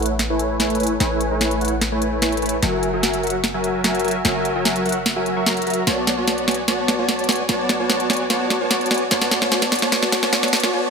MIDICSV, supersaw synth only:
0, 0, Header, 1, 2, 480
1, 0, Start_track
1, 0, Tempo, 405405
1, 1190, Time_signature, 4, 2, 24, 8
1, 12906, End_track
2, 0, Start_track
2, 0, Title_t, "Supersaw synth"
2, 0, Program_c, 0, 81
2, 0, Note_on_c, 0, 57, 74
2, 0, Note_on_c, 0, 64, 67
2, 0, Note_on_c, 0, 71, 70
2, 0, Note_on_c, 0, 73, 65
2, 0, Note_on_c, 0, 78, 80
2, 141, Note_off_c, 0, 57, 0
2, 141, Note_off_c, 0, 64, 0
2, 141, Note_off_c, 0, 71, 0
2, 141, Note_off_c, 0, 78, 0
2, 142, Note_off_c, 0, 73, 0
2, 354, Note_on_c, 0, 57, 71
2, 354, Note_on_c, 0, 73, 68
2, 354, Note_on_c, 0, 80, 83
2, 355, Note_on_c, 0, 64, 66
2, 355, Note_on_c, 0, 71, 67
2, 682, Note_off_c, 0, 57, 0
2, 682, Note_off_c, 0, 64, 0
2, 682, Note_off_c, 0, 71, 0
2, 682, Note_off_c, 0, 73, 0
2, 682, Note_off_c, 0, 80, 0
2, 710, Note_on_c, 0, 57, 89
2, 710, Note_on_c, 0, 64, 81
2, 710, Note_on_c, 0, 71, 84
2, 710, Note_on_c, 0, 73, 86
2, 710, Note_on_c, 0, 80, 94
2, 922, Note_off_c, 0, 57, 0
2, 922, Note_off_c, 0, 64, 0
2, 922, Note_off_c, 0, 71, 0
2, 922, Note_off_c, 0, 73, 0
2, 922, Note_off_c, 0, 80, 0
2, 949, Note_on_c, 0, 57, 99
2, 949, Note_on_c, 0, 64, 93
2, 949, Note_on_c, 0, 71, 91
2, 949, Note_on_c, 0, 73, 90
2, 949, Note_on_c, 0, 80, 108
2, 1101, Note_off_c, 0, 57, 0
2, 1101, Note_off_c, 0, 64, 0
2, 1101, Note_off_c, 0, 71, 0
2, 1101, Note_off_c, 0, 73, 0
2, 1101, Note_off_c, 0, 80, 0
2, 1189, Note_on_c, 0, 80, 103
2, 1190, Note_on_c, 0, 57, 90
2, 1190, Note_on_c, 0, 64, 87
2, 1190, Note_on_c, 0, 71, 87
2, 1190, Note_on_c, 0, 73, 85
2, 1523, Note_off_c, 0, 57, 0
2, 1523, Note_off_c, 0, 64, 0
2, 1523, Note_off_c, 0, 71, 0
2, 1523, Note_off_c, 0, 73, 0
2, 1523, Note_off_c, 0, 80, 0
2, 1552, Note_on_c, 0, 57, 87
2, 1553, Note_on_c, 0, 64, 81
2, 1553, Note_on_c, 0, 71, 80
2, 1553, Note_on_c, 0, 73, 80
2, 1553, Note_on_c, 0, 80, 93
2, 1881, Note_off_c, 0, 57, 0
2, 1881, Note_off_c, 0, 64, 0
2, 1881, Note_off_c, 0, 71, 0
2, 1881, Note_off_c, 0, 73, 0
2, 1882, Note_off_c, 0, 80, 0
2, 1910, Note_on_c, 0, 57, 74
2, 1910, Note_on_c, 0, 64, 65
2, 1910, Note_on_c, 0, 71, 65
2, 1910, Note_on_c, 0, 78, 81
2, 1911, Note_on_c, 0, 73, 69
2, 2061, Note_off_c, 0, 57, 0
2, 2061, Note_off_c, 0, 64, 0
2, 2061, Note_off_c, 0, 71, 0
2, 2061, Note_off_c, 0, 73, 0
2, 2061, Note_off_c, 0, 78, 0
2, 2273, Note_on_c, 0, 57, 74
2, 2273, Note_on_c, 0, 64, 67
2, 2273, Note_on_c, 0, 71, 68
2, 2273, Note_on_c, 0, 73, 68
2, 2273, Note_on_c, 0, 80, 79
2, 2601, Note_off_c, 0, 57, 0
2, 2602, Note_off_c, 0, 64, 0
2, 2602, Note_off_c, 0, 71, 0
2, 2602, Note_off_c, 0, 73, 0
2, 2602, Note_off_c, 0, 80, 0
2, 2628, Note_on_c, 0, 73, 86
2, 2628, Note_on_c, 0, 80, 98
2, 2629, Note_on_c, 0, 57, 89
2, 2629, Note_on_c, 0, 64, 84
2, 2629, Note_on_c, 0, 71, 84
2, 2841, Note_off_c, 0, 57, 0
2, 2841, Note_off_c, 0, 64, 0
2, 2841, Note_off_c, 0, 71, 0
2, 2841, Note_off_c, 0, 73, 0
2, 2841, Note_off_c, 0, 80, 0
2, 2869, Note_on_c, 0, 57, 97
2, 2869, Note_on_c, 0, 64, 91
2, 2869, Note_on_c, 0, 71, 88
2, 2869, Note_on_c, 0, 73, 92
2, 2869, Note_on_c, 0, 80, 112
2, 3021, Note_off_c, 0, 57, 0
2, 3021, Note_off_c, 0, 64, 0
2, 3021, Note_off_c, 0, 71, 0
2, 3021, Note_off_c, 0, 73, 0
2, 3021, Note_off_c, 0, 80, 0
2, 3110, Note_on_c, 0, 54, 97
2, 3110, Note_on_c, 0, 66, 84
2, 3110, Note_on_c, 0, 70, 91
2, 3110, Note_on_c, 0, 76, 85
2, 3110, Note_on_c, 0, 80, 105
2, 3443, Note_off_c, 0, 54, 0
2, 3443, Note_off_c, 0, 66, 0
2, 3443, Note_off_c, 0, 76, 0
2, 3443, Note_off_c, 0, 80, 0
2, 3444, Note_off_c, 0, 70, 0
2, 3473, Note_on_c, 0, 54, 84
2, 3473, Note_on_c, 0, 66, 82
2, 3473, Note_on_c, 0, 70, 79
2, 3473, Note_on_c, 0, 76, 82
2, 3473, Note_on_c, 0, 80, 98
2, 3801, Note_off_c, 0, 66, 0
2, 3801, Note_off_c, 0, 70, 0
2, 3802, Note_off_c, 0, 54, 0
2, 3802, Note_off_c, 0, 76, 0
2, 3802, Note_off_c, 0, 80, 0
2, 3829, Note_on_c, 0, 54, 70
2, 3829, Note_on_c, 0, 66, 68
2, 3829, Note_on_c, 0, 70, 68
2, 3829, Note_on_c, 0, 76, 68
2, 3829, Note_on_c, 0, 78, 80
2, 3980, Note_off_c, 0, 78, 0
2, 3981, Note_off_c, 0, 54, 0
2, 3981, Note_off_c, 0, 66, 0
2, 3981, Note_off_c, 0, 70, 0
2, 3981, Note_off_c, 0, 76, 0
2, 4194, Note_on_c, 0, 54, 73
2, 4194, Note_on_c, 0, 66, 69
2, 4194, Note_on_c, 0, 70, 65
2, 4194, Note_on_c, 0, 80, 81
2, 4195, Note_on_c, 0, 76, 67
2, 4522, Note_off_c, 0, 54, 0
2, 4522, Note_off_c, 0, 66, 0
2, 4522, Note_off_c, 0, 70, 0
2, 4522, Note_off_c, 0, 76, 0
2, 4522, Note_off_c, 0, 80, 0
2, 4550, Note_on_c, 0, 54, 94
2, 4550, Note_on_c, 0, 66, 83
2, 4550, Note_on_c, 0, 76, 84
2, 4550, Note_on_c, 0, 80, 101
2, 4551, Note_on_c, 0, 70, 82
2, 4762, Note_off_c, 0, 54, 0
2, 4762, Note_off_c, 0, 66, 0
2, 4762, Note_off_c, 0, 70, 0
2, 4762, Note_off_c, 0, 76, 0
2, 4762, Note_off_c, 0, 80, 0
2, 4790, Note_on_c, 0, 54, 100
2, 4790, Note_on_c, 0, 70, 90
2, 4791, Note_on_c, 0, 66, 94
2, 4791, Note_on_c, 0, 76, 94
2, 4791, Note_on_c, 0, 80, 109
2, 4941, Note_off_c, 0, 54, 0
2, 4941, Note_off_c, 0, 66, 0
2, 4941, Note_off_c, 0, 70, 0
2, 4942, Note_off_c, 0, 76, 0
2, 4942, Note_off_c, 0, 80, 0
2, 5028, Note_on_c, 0, 54, 95
2, 5029, Note_on_c, 0, 66, 85
2, 5029, Note_on_c, 0, 70, 88
2, 5029, Note_on_c, 0, 76, 82
2, 5029, Note_on_c, 0, 80, 106
2, 5363, Note_off_c, 0, 54, 0
2, 5363, Note_off_c, 0, 66, 0
2, 5363, Note_off_c, 0, 70, 0
2, 5363, Note_off_c, 0, 76, 0
2, 5363, Note_off_c, 0, 80, 0
2, 5394, Note_on_c, 0, 66, 79
2, 5394, Note_on_c, 0, 76, 80
2, 5394, Note_on_c, 0, 80, 95
2, 5395, Note_on_c, 0, 54, 86
2, 5395, Note_on_c, 0, 70, 79
2, 5722, Note_off_c, 0, 54, 0
2, 5722, Note_off_c, 0, 66, 0
2, 5722, Note_off_c, 0, 70, 0
2, 5722, Note_off_c, 0, 76, 0
2, 5722, Note_off_c, 0, 80, 0
2, 5749, Note_on_c, 0, 54, 72
2, 5749, Note_on_c, 0, 66, 67
2, 5749, Note_on_c, 0, 78, 80
2, 5750, Note_on_c, 0, 70, 69
2, 5750, Note_on_c, 0, 76, 70
2, 5901, Note_off_c, 0, 54, 0
2, 5901, Note_off_c, 0, 66, 0
2, 5901, Note_off_c, 0, 70, 0
2, 5901, Note_off_c, 0, 76, 0
2, 5901, Note_off_c, 0, 78, 0
2, 6112, Note_on_c, 0, 54, 75
2, 6112, Note_on_c, 0, 66, 67
2, 6112, Note_on_c, 0, 76, 67
2, 6112, Note_on_c, 0, 80, 79
2, 6113, Note_on_c, 0, 70, 70
2, 6328, Note_off_c, 0, 54, 0
2, 6328, Note_off_c, 0, 66, 0
2, 6328, Note_off_c, 0, 70, 0
2, 6328, Note_off_c, 0, 76, 0
2, 6328, Note_off_c, 0, 80, 0
2, 6352, Note_on_c, 0, 54, 95
2, 6352, Note_on_c, 0, 66, 88
2, 6352, Note_on_c, 0, 70, 87
2, 6352, Note_on_c, 0, 76, 89
2, 6352, Note_on_c, 0, 85, 112
2, 6441, Note_off_c, 0, 54, 0
2, 6441, Note_off_c, 0, 66, 0
2, 6441, Note_off_c, 0, 70, 0
2, 6441, Note_off_c, 0, 76, 0
2, 6441, Note_off_c, 0, 85, 0
2, 6469, Note_on_c, 0, 54, 76
2, 6469, Note_on_c, 0, 66, 68
2, 6469, Note_on_c, 0, 70, 68
2, 6469, Note_on_c, 0, 76, 64
2, 6469, Note_on_c, 0, 82, 82
2, 6681, Note_off_c, 0, 54, 0
2, 6681, Note_off_c, 0, 66, 0
2, 6681, Note_off_c, 0, 70, 0
2, 6681, Note_off_c, 0, 76, 0
2, 6681, Note_off_c, 0, 82, 0
2, 6709, Note_on_c, 0, 54, 97
2, 6709, Note_on_c, 0, 70, 89
2, 6709, Note_on_c, 0, 76, 85
2, 6709, Note_on_c, 0, 82, 108
2, 6710, Note_on_c, 0, 66, 89
2, 6914, Note_off_c, 0, 76, 0
2, 6915, Note_off_c, 0, 54, 0
2, 6915, Note_off_c, 0, 66, 0
2, 6915, Note_off_c, 0, 70, 0
2, 6915, Note_off_c, 0, 82, 0
2, 6949, Note_on_c, 0, 59, 84
2, 6949, Note_on_c, 0, 66, 80
2, 6949, Note_on_c, 0, 73, 79
2, 6949, Note_on_c, 0, 81, 95
2, 6950, Note_on_c, 0, 74, 79
2, 7283, Note_off_c, 0, 59, 0
2, 7283, Note_off_c, 0, 66, 0
2, 7283, Note_off_c, 0, 73, 0
2, 7283, Note_off_c, 0, 74, 0
2, 7283, Note_off_c, 0, 81, 0
2, 7311, Note_on_c, 0, 66, 73
2, 7311, Note_on_c, 0, 81, 86
2, 7312, Note_on_c, 0, 59, 82
2, 7312, Note_on_c, 0, 73, 72
2, 7312, Note_on_c, 0, 74, 72
2, 7641, Note_off_c, 0, 59, 0
2, 7641, Note_off_c, 0, 66, 0
2, 7641, Note_off_c, 0, 73, 0
2, 7641, Note_off_c, 0, 74, 0
2, 7641, Note_off_c, 0, 81, 0
2, 7668, Note_on_c, 0, 59, 71
2, 7668, Note_on_c, 0, 66, 63
2, 7668, Note_on_c, 0, 80, 78
2, 7669, Note_on_c, 0, 73, 62
2, 7669, Note_on_c, 0, 74, 60
2, 7820, Note_off_c, 0, 59, 0
2, 7820, Note_off_c, 0, 66, 0
2, 7820, Note_off_c, 0, 73, 0
2, 7820, Note_off_c, 0, 74, 0
2, 7820, Note_off_c, 0, 80, 0
2, 7908, Note_on_c, 0, 59, 88
2, 7909, Note_on_c, 0, 66, 80
2, 7909, Note_on_c, 0, 73, 77
2, 7909, Note_on_c, 0, 74, 79
2, 7909, Note_on_c, 0, 81, 95
2, 8243, Note_off_c, 0, 59, 0
2, 8243, Note_off_c, 0, 66, 0
2, 8243, Note_off_c, 0, 73, 0
2, 8243, Note_off_c, 0, 74, 0
2, 8243, Note_off_c, 0, 81, 0
2, 8272, Note_on_c, 0, 59, 78
2, 8272, Note_on_c, 0, 66, 70
2, 8272, Note_on_c, 0, 73, 76
2, 8272, Note_on_c, 0, 74, 73
2, 8272, Note_on_c, 0, 81, 88
2, 8601, Note_off_c, 0, 59, 0
2, 8601, Note_off_c, 0, 66, 0
2, 8601, Note_off_c, 0, 73, 0
2, 8601, Note_off_c, 0, 74, 0
2, 8601, Note_off_c, 0, 81, 0
2, 8628, Note_on_c, 0, 74, 68
2, 8628, Note_on_c, 0, 80, 83
2, 8629, Note_on_c, 0, 59, 73
2, 8629, Note_on_c, 0, 66, 69
2, 8629, Note_on_c, 0, 73, 70
2, 8780, Note_off_c, 0, 74, 0
2, 8780, Note_off_c, 0, 80, 0
2, 8781, Note_off_c, 0, 59, 0
2, 8781, Note_off_c, 0, 66, 0
2, 8781, Note_off_c, 0, 73, 0
2, 8868, Note_on_c, 0, 59, 91
2, 8868, Note_on_c, 0, 81, 96
2, 8869, Note_on_c, 0, 66, 80
2, 8869, Note_on_c, 0, 73, 81
2, 8869, Note_on_c, 0, 74, 83
2, 9203, Note_off_c, 0, 59, 0
2, 9203, Note_off_c, 0, 66, 0
2, 9203, Note_off_c, 0, 73, 0
2, 9203, Note_off_c, 0, 74, 0
2, 9203, Note_off_c, 0, 81, 0
2, 9232, Note_on_c, 0, 66, 75
2, 9232, Note_on_c, 0, 73, 77
2, 9232, Note_on_c, 0, 74, 78
2, 9232, Note_on_c, 0, 81, 90
2, 9233, Note_on_c, 0, 59, 84
2, 9561, Note_off_c, 0, 59, 0
2, 9561, Note_off_c, 0, 66, 0
2, 9561, Note_off_c, 0, 73, 0
2, 9561, Note_off_c, 0, 74, 0
2, 9561, Note_off_c, 0, 81, 0
2, 9588, Note_on_c, 0, 66, 64
2, 9588, Note_on_c, 0, 73, 62
2, 9588, Note_on_c, 0, 74, 65
2, 9588, Note_on_c, 0, 80, 80
2, 9589, Note_on_c, 0, 59, 68
2, 9740, Note_off_c, 0, 59, 0
2, 9740, Note_off_c, 0, 66, 0
2, 9740, Note_off_c, 0, 73, 0
2, 9740, Note_off_c, 0, 74, 0
2, 9740, Note_off_c, 0, 80, 0
2, 9828, Note_on_c, 0, 59, 90
2, 9828, Note_on_c, 0, 66, 83
2, 9828, Note_on_c, 0, 73, 78
2, 9828, Note_on_c, 0, 74, 83
2, 9828, Note_on_c, 0, 81, 100
2, 10162, Note_off_c, 0, 66, 0
2, 10163, Note_off_c, 0, 59, 0
2, 10163, Note_off_c, 0, 73, 0
2, 10163, Note_off_c, 0, 74, 0
2, 10163, Note_off_c, 0, 81, 0
2, 10191, Note_on_c, 0, 59, 82
2, 10191, Note_on_c, 0, 66, 79
2, 10191, Note_on_c, 0, 73, 74
2, 10191, Note_on_c, 0, 74, 75
2, 10191, Note_on_c, 0, 81, 91
2, 10520, Note_off_c, 0, 73, 0
2, 10521, Note_off_c, 0, 59, 0
2, 10521, Note_off_c, 0, 66, 0
2, 10521, Note_off_c, 0, 74, 0
2, 10521, Note_off_c, 0, 81, 0
2, 10548, Note_on_c, 0, 59, 73
2, 10548, Note_on_c, 0, 66, 67
2, 10548, Note_on_c, 0, 73, 68
2, 10548, Note_on_c, 0, 74, 72
2, 10548, Note_on_c, 0, 80, 86
2, 10700, Note_off_c, 0, 59, 0
2, 10700, Note_off_c, 0, 66, 0
2, 10700, Note_off_c, 0, 73, 0
2, 10700, Note_off_c, 0, 74, 0
2, 10700, Note_off_c, 0, 80, 0
2, 10787, Note_on_c, 0, 59, 93
2, 10787, Note_on_c, 0, 66, 87
2, 10787, Note_on_c, 0, 74, 84
2, 10788, Note_on_c, 0, 73, 87
2, 10788, Note_on_c, 0, 81, 104
2, 11122, Note_off_c, 0, 59, 0
2, 11122, Note_off_c, 0, 66, 0
2, 11122, Note_off_c, 0, 73, 0
2, 11122, Note_off_c, 0, 74, 0
2, 11123, Note_off_c, 0, 81, 0
2, 11150, Note_on_c, 0, 59, 86
2, 11150, Note_on_c, 0, 81, 90
2, 11151, Note_on_c, 0, 66, 78
2, 11151, Note_on_c, 0, 73, 79
2, 11151, Note_on_c, 0, 74, 81
2, 11250, Note_off_c, 0, 59, 0
2, 11250, Note_off_c, 0, 66, 0
2, 11250, Note_off_c, 0, 73, 0
2, 11250, Note_off_c, 0, 74, 0
2, 11250, Note_off_c, 0, 81, 0
2, 11267, Note_on_c, 0, 59, 94
2, 11267, Note_on_c, 0, 73, 82
2, 11267, Note_on_c, 0, 74, 85
2, 11267, Note_on_c, 0, 81, 104
2, 11268, Note_on_c, 0, 66, 83
2, 11602, Note_off_c, 0, 59, 0
2, 11602, Note_off_c, 0, 66, 0
2, 11602, Note_off_c, 0, 73, 0
2, 11602, Note_off_c, 0, 74, 0
2, 11602, Note_off_c, 0, 81, 0
2, 11630, Note_on_c, 0, 59, 86
2, 11630, Note_on_c, 0, 66, 81
2, 11630, Note_on_c, 0, 73, 77
2, 11630, Note_on_c, 0, 81, 94
2, 11631, Note_on_c, 0, 74, 77
2, 11729, Note_off_c, 0, 66, 0
2, 11729, Note_off_c, 0, 73, 0
2, 11730, Note_off_c, 0, 59, 0
2, 11730, Note_off_c, 0, 74, 0
2, 11730, Note_off_c, 0, 81, 0
2, 11747, Note_on_c, 0, 59, 92
2, 11747, Note_on_c, 0, 73, 85
2, 11747, Note_on_c, 0, 74, 87
2, 11748, Note_on_c, 0, 66, 87
2, 11748, Note_on_c, 0, 81, 104
2, 12082, Note_off_c, 0, 59, 0
2, 12082, Note_off_c, 0, 66, 0
2, 12082, Note_off_c, 0, 73, 0
2, 12082, Note_off_c, 0, 74, 0
2, 12082, Note_off_c, 0, 81, 0
2, 12111, Note_on_c, 0, 66, 78
2, 12111, Note_on_c, 0, 73, 77
2, 12111, Note_on_c, 0, 81, 93
2, 12112, Note_on_c, 0, 59, 88
2, 12112, Note_on_c, 0, 74, 79
2, 12210, Note_off_c, 0, 59, 0
2, 12210, Note_off_c, 0, 66, 0
2, 12210, Note_off_c, 0, 73, 0
2, 12210, Note_off_c, 0, 74, 0
2, 12210, Note_off_c, 0, 81, 0
2, 12227, Note_on_c, 0, 59, 93
2, 12227, Note_on_c, 0, 66, 86
2, 12227, Note_on_c, 0, 73, 85
2, 12227, Note_on_c, 0, 74, 90
2, 12228, Note_on_c, 0, 81, 104
2, 12562, Note_off_c, 0, 59, 0
2, 12562, Note_off_c, 0, 66, 0
2, 12562, Note_off_c, 0, 73, 0
2, 12562, Note_off_c, 0, 74, 0
2, 12562, Note_off_c, 0, 81, 0
2, 12590, Note_on_c, 0, 81, 96
2, 12591, Note_on_c, 0, 59, 90
2, 12591, Note_on_c, 0, 66, 82
2, 12591, Note_on_c, 0, 73, 84
2, 12591, Note_on_c, 0, 74, 81
2, 12690, Note_off_c, 0, 59, 0
2, 12690, Note_off_c, 0, 66, 0
2, 12690, Note_off_c, 0, 73, 0
2, 12690, Note_off_c, 0, 74, 0
2, 12690, Note_off_c, 0, 81, 0
2, 12708, Note_on_c, 0, 59, 101
2, 12708, Note_on_c, 0, 66, 88
2, 12708, Note_on_c, 0, 73, 90
2, 12708, Note_on_c, 0, 74, 89
2, 12708, Note_on_c, 0, 81, 110
2, 12906, Note_off_c, 0, 59, 0
2, 12906, Note_off_c, 0, 66, 0
2, 12906, Note_off_c, 0, 73, 0
2, 12906, Note_off_c, 0, 74, 0
2, 12906, Note_off_c, 0, 81, 0
2, 12906, End_track
0, 0, End_of_file